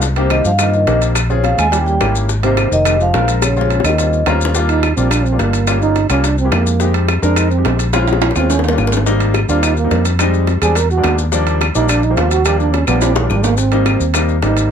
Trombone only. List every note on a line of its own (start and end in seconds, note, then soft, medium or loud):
0.18 0.30 C3 medium
0.31 0.44 D#3 medium
0.45 0.52 F3 medium
0.59 0.72 D#3 medium
0.73 1.00 D#3 medium
1.30 1.36 C#3 medium
1.44 1.50 F3 medium
1.58 1.71 G#3 loud
1.72 1.78 G3 medium
1.86 2.13 G3 medium
2.43 2.69 C3 medium
2.72 2.98 D#3 medium
3.00 3.26 F3 medium
3.42 3.82 C#3 medium
3.85 4.24 D#3 medium
4.69 4.95 D#4 medium
4.96 5.12 C4 medium
5.11 5.26 D4 medium
5.24 5.40 C4 medium
5.39 5.81 A#3 medium
5.81 6.08 D#4 loud
6.10 6.26 C#4 medium
6.24 6.38 D4 medium
6.39 6.54 C4 medium
6.53 6.95 A#3 loud
7.23 7.39 D4 medium
7.37 7.50 D#4 medium
7.51 7.77 C4 medium
8.36 8.51 C4 medium
8.50 8.65 C#4 loud
8.63 8.92 A#3 medium
9.49 9.65 D4 medium
9.63 9.77 D#4 loud
9.77 10.03 A#3 medium
10.62 10.79 G#4 loud
10.77 10.90 A#4 loud
10.91 11.17 F#4 medium
11.76 11.91 D#4 loud
11.90 12.06 D4 loud
12.04 12.19 D#4 loud
12.17 12.33 F4 loud
12.32 12.47 F#4 loud
12.45 12.58 G4 loud
12.59 12.75 D4 medium
12.73 12.87 C#4 medium
12.87 13.03 B3 medium
13.01 13.15 C4 loud
13.15 13.31 D#3 medium
13.30 13.45 G3 medium
13.44 13.60 A#3 loud
13.58 14.15 C4 medium
14.43 14.71 D#4 medium